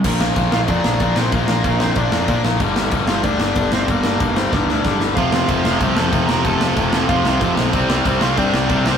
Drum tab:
CC |x-x-x-x-|x-x-x-x-|x-x-x-x-|x-x-----|
SD |-o-o-o-o|-o-o-o-o|-o-o-o-o|-o-ooooo|
BD |o-o-o-o-|o-o-o-o-|o-o-o-o-|o-o-o-o-|

CC |x-x-x-x-|x-x-x-x-|x-x-x-x-|
SD |-o-o-o-o|-o-o-o-o|-o-o-o-o|
BD |o-o-o-o-|o-o-o-o-|o-o-o-o-|